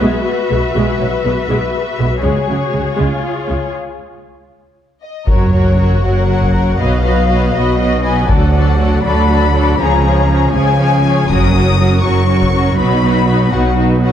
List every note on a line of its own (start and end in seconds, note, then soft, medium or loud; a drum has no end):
0.00 0.09 B1 soft
0.00 0.10 B2 medium
0.00 0.24 G#3 medium
0.00 2.95 F#4 soft
0.00 2.20 B4 soft
0.00 2.20 E5 soft
0.50 0.59 B1 soft
0.50 0.58 B2 soft
0.50 0.58 G#3 soft
0.74 0.82 B1 soft
0.74 0.83 B2 medium
0.74 0.98 G#3 medium
0.99 1.07 B1 soft
0.99 1.08 B2 soft
0.99 1.08 F#3 soft
1.24 1.32 B1 soft
1.24 1.33 B2 soft
1.24 1.33 G#3 soft
1.49 1.57 B1 soft
1.49 1.58 B2 medium
1.49 1.72 G#3 soft
1.98 2.07 B1 soft
1.98 2.07 B2 soft
1.98 2.06 G#3 soft
2.23 2.31 C#2 medium
2.23 2.31 C#3 soft
2.23 2.46 G#3 soft
2.23 3.71 G#4 soft
2.23 3.71 C#5 soft
2.48 2.57 C#2 soft
2.48 2.57 C#3 soft
2.48 2.56 F#3 soft
2.73 2.83 C#2 soft
2.73 2.81 C#3 soft
2.73 2.81 G#3 soft
2.97 3.08 C#2 soft
2.97 3.07 C#3 soft
2.97 3.21 G#3 soft
2.97 3.74 F4 soft
3.49 3.59 C#2 soft
3.49 3.58 C#3 soft
3.49 3.57 G#3 soft
5.02 5.26 D#5 soft
5.27 5.95 F#1 soft
5.27 5.95 F#2 soft
5.27 5.53 F#3 soft
5.27 5.52 F#4 soft
5.27 5.51 A#4 soft
5.27 5.51 C#5 soft
5.27 6.04 C#5 soft
5.27 taiko soft
5.27 sub drop soft
5.52 5.78 F#3 soft
5.52 5.78 F#4 soft
5.52 5.77 A#4 soft
5.52 5.78 C#5 soft
5.78 6.03 F#3 soft
5.78 6.04 F#4 soft
5.78 6.02 A#4 soft
5.78 6.03 C#5 soft
6.04 6.71 F#1 soft
6.04 6.70 F#2 soft
6.04 6.28 F#3 soft
6.04 6.28 F#4 soft
6.04 6.28 A#4 soft
6.04 6.28 C#5 soft
6.04 6.79 F#5 medium
6.29 6.53 F#3 soft
6.29 6.53 F#4 soft
6.29 6.52 A#4 soft
6.29 6.52 C#5 soft
6.42 taiko soft
6.53 6.79 F#3 soft
6.53 6.79 F#4 soft
6.53 6.78 A#4 soft
6.53 6.78 C#5 soft
6.78 7.45 B1 soft
6.78 7.45 B2 soft
6.78 7.04 F#3 soft
6.78 7.04 F#4 soft
6.78 7.02 B4 soft
6.78 7.03 D#5 soft
6.78 7.54 F5 medium
7.04 7.29 F#3 soft
7.04 7.29 F#4 soft
7.04 7.27 B4 soft
7.04 7.27 D#5 soft
7.28 7.54 F#3 soft
7.28 7.54 F#4 soft
7.28 7.53 B4 soft
7.28 7.53 D#5 soft
7.54 8.20 B1 soft
7.54 8.20 B2 soft
7.54 7.79 F#3 soft
7.54 7.79 F#4 soft
7.54 7.78 B4 soft
7.54 7.78 D#5 soft
7.54 8.04 D#5 medium
7.79 8.04 F#3 soft
7.79 8.04 F#4 soft
7.79 8.02 B4 soft
7.79 8.02 D#5 soft
8.03 8.28 F#3 soft
8.03 8.28 F#4 soft
8.03 8.28 B4 soft
8.03 8.28 D#5 soft
8.03 8.28 G#5 soft
8.29 8.96 D2 medium
8.29 8.96 D3 medium
8.29 8.54 F#3 soft
8.29 8.54 F#4 soft
8.29 8.54 A4 soft
8.29 8.53 D5 soft
8.29 9.05 F#5 medium
8.29 taiko soft
8.55 8.79 F#3 soft
8.55 8.79 F#4 soft
8.55 8.79 A4 soft
8.55 8.79 D5 soft
8.80 9.03 F#3 soft
8.80 9.03 F#4 soft
8.80 9.05 A4 soft
8.80 9.05 D5 soft
9.04 9.71 D2 soft
9.04 9.71 D3 medium
9.04 9.28 F#3 soft
9.04 9.28 F#4 soft
9.04 9.30 A4 soft
9.04 9.30 D5 soft
9.04 9.78 B5 medium
9.29 9.53 F#3 soft
9.29 9.53 F#4 soft
9.29 9.55 A4 soft
9.29 9.55 D5 soft
9.54 9.79 F#3 soft
9.54 9.79 F#4 soft
9.54 9.80 A4 soft
9.54 9.80 D5 soft
9.79 10.45 C#2 medium
9.79 10.45 C#3 medium
9.79 10.03 F3 soft
9.79 10.03 C#4 soft
9.79 10.04 G#4 soft
9.79 10.04 C#5 soft
9.79 10.54 A#5 medium
10.04 10.28 F3 soft
10.04 10.28 C#4 soft
10.04 10.29 G#4 soft
10.04 10.30 C#5 soft
10.29 10.53 F3 soft
10.29 10.53 C#4 soft
10.29 10.54 G#4 soft
10.29 10.54 C#5 soft
10.53 11.20 C#2 medium
10.53 11.21 C#3 medium
10.53 10.77 F3 soft
10.53 10.78 C#4 medium
10.53 10.79 G#4 medium
10.53 10.79 C#5 soft
10.53 11.28 G#5 medium
10.78 11.03 F3 soft
10.78 11.03 C#4 soft
10.78 11.04 G#4 soft
10.78 11.04 C#5 soft
11.04 11.29 F3 soft
11.04 11.28 C#4 soft
11.04 11.30 G#4 soft
11.04 11.30 C#5 soft
11.29 11.95 F#1 medium
11.29 11.95 F#2 medium
11.29 11.54 F#3 soft
11.29 11.54 C#4 soft
11.29 11.54 F#4 soft
11.29 11.54 A#4 soft
11.29 12.04 D#6 medium
11.29 taiko soft
11.55 11.79 F#3 soft
11.55 11.79 C#4 soft
11.55 11.78 F#4 soft
11.55 11.79 A#4 soft
11.80 12.03 F#3 soft
11.80 12.03 C#4 soft
11.80 12.04 F#4 soft
11.80 12.04 A#4 soft
12.03 12.69 F#1 medium
12.03 12.69 F#2 medium
12.03 12.28 F#3 soft
12.03 12.28 C#4 soft
12.03 12.28 F#4 soft
12.03 12.28 A#4 soft
12.03 12.78 C#6 medium
12.29 12.53 F#3 soft
12.29 12.53 C#4 soft
12.29 12.52 F#4 soft
12.29 12.52 A#4 soft
12.42 taiko soft
12.53 12.77 F#3 soft
12.53 12.79 C#4 soft
12.53 12.78 F#4 soft
12.53 12.78 A#4 soft
12.77 13.44 B1 medium
12.77 13.44 B2 medium
12.77 13.03 F#3 medium
12.77 13.03 D#4 soft
12.77 13.03 F#4 soft
12.77 13.02 B4 soft
12.77 13.50 B5 medium
13.03 13.28 F#3 soft
13.03 13.28 D#4 soft
13.03 13.27 F#4 soft
13.03 13.27 B4 soft
13.28 13.52 F#3 soft
13.28 13.53 D#4 soft
13.28 13.51 F#4 soft
13.28 13.51 B4 soft
13.52 14.12 B1 soft
13.52 14.12 B2 soft
13.52 13.77 F#3 soft
13.52 13.77 D#4 soft
13.52 13.76 F#4 soft
13.52 13.76 B4 soft
13.52 13.77 F#5 medium
13.77 14.02 F#3 soft
13.77 14.02 D#4 soft
13.77 14.01 F#4 soft
13.77 14.01 B4 soft
14.02 14.12 F#3 soft
14.02 14.12 D#4 soft
14.02 14.12 F#4 soft
14.02 14.12 B4 soft
14.02 14.12 F#5 soft